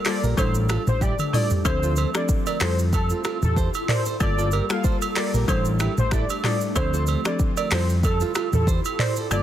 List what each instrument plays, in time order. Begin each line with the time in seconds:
Already playing: ambient pad G3 F4 A4 A#4
0.05 marimba G3 A#3 F4 A4, nylon-string guitar A4 C5, soft synth lead D5, finger snap, cross-stick, clap, open hi-hat, shaker
0.23 fingered electric bass A#1, nylon-string guitar G4 A#4, shaker
0.37 fingered electric bass A1, marimba G3 D4 E4 A4, ambient pad A3 D4 G4, soft synth lead C5, kick, high agogo, shaker
0.55 shaker
0.69 nylon-string guitar F4 A4, finger snap, cross-stick, high agogo, shaker
0.87 fingered electric bass A1, soft synth lead C5, mid tom, shaker
1.01 nylon-string guitar E4 G4, soft synth lead D5, kick, high tom, low woodblock, shaker
1.19 mid tom, high agogo, shaker
1.33 marimba G3 D4 E4 A4, nylon-string guitar F4 A4, soft synth lead D5, mid tom, open hi-hat, shaker
1.50 floor tom, shaker
1.65 fingered electric bass D2, marimba F3 C4 D4 A4, soft synth lead C5, kick, high agogo, shaker
1.83 nylon-string guitar F4 A4, shaker
1.96 nylon-string guitar A4 C5, high agogo, shaker
2.14 marimba F3 C4 D4 A4, soft synth lead D5, finger snap, cross-stick, shaker
2.29 kick, shaker
2.46 nylon-string guitar A#4 D5, high agogo, shaker
2.60 fingered electric bass F2, marimba G3 E4 F4 A4, ambient pad E4 F4 G4 A4, nylon-string guitar A4 C5, soft synth lead C5, finger snap, cross-stick, clap, open hi-hat, shaker
2.79 shaker
2.93 soft synth lead A4, kick, high agogo, shaker
3.10 nylon-string guitar F4 A4, shaker
3.24 nylon-string guitar F4 A4, finger snap, cross-stick, high agogo, shaker
3.42 fingered electric bass E2, soft synth lead A4, mid tom, shaker
3.56 nylon-string guitar A4 C5, kick, shaker
3.74 high agogo, shaker
3.88 nylon-string guitar A#4 D5, soft synth lead C5, clap, mid tom, open hi-hat
4.06 nylon-string guitar A4 C5, shaker
4.20 fingered electric bass G1, marimba G3 A#3 F4 A4, ambient pad G3 F4 A4 A#4, soft synth lead D5, kick, high agogo, shaker
4.38 nylon-string guitar F4 A4, shaker
4.51 nylon-string guitar G4 A#4, high agogo, shaker
4.70 marimba G3 A#3 F4 A4, soft synth lead F5, finger snap, cross-stick, shaker
4.84 nylon-string guitar A4 C5, kick, shaker
5.02 high agogo, shaker
5.16 marimba G3 A#3 F4 A4, nylon-string guitar A#4 D5, soft synth lead D5, finger snap, cross-stick, clap, open hi-hat, shaker
5.34 fingered electric bass A#1, nylon-string guitar G4 A#4, shaker
5.48 fingered electric bass A1, marimba G3 D4 E4 A4, ambient pad A3 D4 G4, soft synth lead C5, kick, high agogo, shaker
5.65 shaker
5.80 nylon-string guitar E4 G4, finger snap, cross-stick, high agogo, shaker
5.98 fingered electric bass A1, soft synth lead C5, mid tom, shaker
6.11 nylon-string guitar E4 A4, soft synth lead D5, finger snap, kick, cross-stick, shaker
6.29 high agogo, shaker
6.44 marimba G3 D4 E4 A4, nylon-string guitar F4 A4, soft synth lead D5, finger snap, cross-stick, clap, mid tom, open hi-hat
6.61 shaker
6.75 fingered electric bass D2, marimba F3 C4 D4 A4, soft synth lead C5, kick, high agogo, shaker
6.94 nylon-string guitar F4 A4, shaker
7.07 nylon-string guitar A4 C5, high agogo, shaker
7.25 marimba F3 C4 D4 A4, soft synth lead D5, finger snap, cross-stick, shaker
7.39 kick, shaker
7.57 nylon-string guitar A#4 D5, high agogo, shaker
7.71 fingered electric bass F2, marimba G3 E4 F4 A4, ambient pad E4 F4 G4 A4, nylon-string guitar A4 C5, soft synth lead C5, finger snap, cross-stick, clap, open hi-hat, shaker
7.90 shaker
8.03 soft synth lead A4, kick, high agogo, shaker
8.20 nylon-string guitar F4 A4, shaker
8.35 nylon-string guitar F4 A4, finger snap, cross-stick, high agogo, shaker
8.53 fingered electric bass E2, soft synth lead A4, mid tom, shaker
8.67 nylon-string guitar A4 C5, kick, shaker
8.85 high agogo, shaker
8.99 nylon-string guitar A#4 D5, soft synth lead C5, clap, mid tom, open hi-hat
9.16 nylon-string guitar A4 C5, shaker
9.31 fingered electric bass G1, marimba G3 A#3 F4 A4, ambient pad G3 F4 A#4, soft synth lead D5, high agogo, shaker